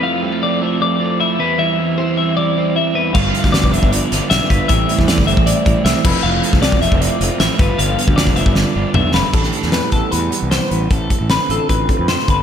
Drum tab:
CC |----------------|----------------|x---------------|--------------x-|
HH |----------------|----------------|--x-x-x-x-x-x-x-|x-x-x-x-x-x-x---|
SD |----------------|----------------|---oo-----o-o---|---ooo------o---|
T2 |----------------|----------------|----------------|----------------|
BD |----------------|----------------|o--o-o-o------o-|o--o-o-o--o---o-|

CC |----------------|----------------|x---------------|----------------|
HH |--x-x-x-x-x-x-x-|x-x-x-x---------|--x-x-x-x-x-x-x-|x-x-x-x-x-x-x-x-|
SD |---oo-------o---|----oo--o-----o-|-o-oo-------o---|----o-------oo--|
T2 |----------------|------------o---|----------------|----------------|
BD |---o-o-o------o-|---o-o-o--------|o-----o---------|o-o-----o-o---o-|